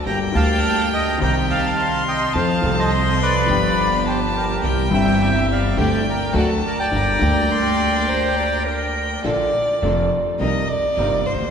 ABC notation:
X:1
M:4/4
L:1/16
Q:1/4=104
K:Gm
V:1 name="Violin"
g8 g4 c'4 | a4 c'4 =b4 a4 | g4 =e4 g4 a4 | b4 c'4 b4 g4 |
[K:Bb] d6 z2 e2 d4 c2 |]
V:2 name="Bandoneon"
[gb]2 [fa]4 [eg]2 [gb]2 [fa]4 [eg]2 | [cf]3 [ce]3 [=Bd]6 [Gc]2 [G_B]2- | [GB]2 [=eg]4 [df]2 [dg]2 [Bd]2 [d^f]2 [Bd] [dg]- | [dg]12 z4 |
[K:Bb] z16 |]
V:3 name="Clarinet"
z16 | z16 | z16 | z4 B4 c2 d2 B4 |
[K:Bb] z16 |]
V:4 name="String section"
[B,DG]2 [B,DG]6 [CEG]8 | [CFA]2 [CFA]6 [=B,FG]8 | [C=EG]2 [CEG]6 [A,DG]2 z2 [A,D^F]2 z2 | [B,DG]2 [B,DG]12- [B,DG]2 |
[K:Bb] [B,DA]2 z2 [B,DA]2 z2 [CEB]2 z2 [CEB]2 z2 |]
V:5 name="Grand piano" clef=bass
[G,,,G,,D,G,B,G]2 [D,,D,G,B,G]6 [C,,C,E,G,CG]8 | [F,,F,A,CA]2 [C,,C,F,A,CA]6 [G,,,G,,F,=B,DG]8 | [C,,C,=E,G,CG]2 [G,,,G,,E,G,CG]6 [D,,D,G,A,G]2 z2 [D,,D,^F,A,^F]2 z2 | [G,,,G,,D,G,B,G]2 [D,,D,G,B,G]12- [D,,D,G,B,G]2 |
[K:Bb] [B,,,B,,D,A,B,F]2 z2 [F,,,F,,D,A,B,F]2 z2 [C,,C,G,B,E]2 z2 [G,,,G,,C,G,B,E]2 z/2 D,,/2 E,,/2 z/2 |]
V:6 name="Upright bass" clef=bass
G,,,3/2 z/2 D,,4- D,,3/2 z/2 C,,6- C,,3/2 z/2 | F,,3/2 z/2 C,,4- C,,3/2 z/2 G,,,6- G,,,3/2 z/2 | C,,3/2 z/2 G,,,4- G,,,3/2 z/2 D,,3/2 z2 z/2 D,,3/2 z2 z/2 | G,,,3/2 z/2 D,,12- D,,3/2 z/2 |
[K:Bb] B,,,3/2 z2 z/2 F,,,3/2 z2 z/2 C,,3/2 z2 z/2 G,,,3/2 z D,,/2 E,,/2 z/2 |]